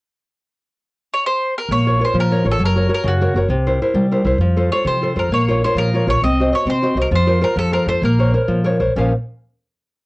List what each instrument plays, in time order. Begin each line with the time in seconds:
1.14 mandolin C#5
1.26 mandolin C5
1.58 mandolin A#4
1.69 upright bass A#1, nylon-string guitar A#3, mandolin C#5
1.86 nylon-string guitar F4 A#4 C#5
2.00 nylon-string guitar F4 A#4 C#5
2.05 mandolin C5
2.14 upright bass A#2, nylon-string guitar F3
2.20 mandolin A#4
2.31 nylon-string guitar F4 A#4 C#5
2.45 upright bass A1, nylon-string guitar F4 A#4 C#5
2.52 mandolin A4
2.59 upright bass F#1, nylon-string guitar F#3
2.66 mandolin A#4
2.76 nylon-string guitar F#4 A#4 C#5
2.89 nylon-string guitar F#4 A#4 C#5
2.94 mandolin A#4
3.04 upright bass F#2, nylon-string guitar C#3
3.08 mandolin F#4
3.21 nylon-string guitar F#4 A#4 C#5
3.34 upright bass F#1, nylon-string guitar F#4 A#4 C#5
3.49 upright bass C2, nylon-string guitar C3
3.67 nylon-string guitar E4 A#4 C5
3.82 nylon-string guitar E4 A#4 C5
3.94 upright bass C3, nylon-string guitar G3
4.11 nylon-string guitar E4 A#4 C5
4.24 upright bass C2, nylon-string guitar E4 A#4 C5
4.38 upright bass F2, nylon-string guitar F3
4.56 nylon-string guitar F4 A4 C5
4.72 nylon-string guitar F4 A4 C5, mandolin C#5
4.85 nylon-string guitar C3, upright bass F3, mandolin C5
5.02 nylon-string guitar F4 A4 C5
5.16 upright bass F2, nylon-string guitar F4 A4 C5, mandolin A#4
5.29 upright bass A#1, nylon-string guitar A#3
5.34 mandolin C#5
5.48 nylon-string guitar F4 A#4 C#5
5.64 nylon-string guitar F4 A#4 C#5, mandolin C5
5.75 upright bass A#2, nylon-string guitar F3, mandolin A#4
5.94 nylon-string guitar F4 A#4 C#5
6.07 upright bass A#1, nylon-string guitar F4 A#4 C#5, mandolin C#5
6.22 upright bass C2, nylon-string guitar C4, mandolin D#5
6.40 nylon-string guitar F#4 C5 D#5
6.52 nylon-string guitar F#4 C5 D#5, mandolin C#5
6.65 upright bass C3, nylon-string guitar C4
6.70 mandolin C5
6.82 nylon-string guitar F#4 C5 D#5
6.95 upright bass C2, nylon-string guitar F#4 C5 D#5
7.01 mandolin A#4
7.11 upright bass F2, nylon-string guitar F3
7.15 mandolin C5
7.27 nylon-string guitar F4 A#4 C5
7.41 nylon-string guitar F4 A#4 C5, mandolin A#4
7.56 upright bass F2, nylon-string guitar F3, mandolin A4
7.72 nylon-string guitar F4 A4 C5, mandolin A#4
7.86 upright bass F2, nylon-string guitar F4 A4 C5, mandolin C5
8.02 upright bass A#1, nylon-string guitar A#3, mandolin A#4
8.19 nylon-string guitar A#4 C5 C#5
8.34 nylon-string guitar A#4 C5 C#5
8.48 upright bass A#2, nylon-string guitar F3
8.64 nylon-string guitar A#4 C5 C#5
8.80 upright bass A#1, nylon-string guitar A#4 C5 C#5
8.96 upright bass A#1, nylon-string guitar A#2 F3 C#4 A#4 C5 F5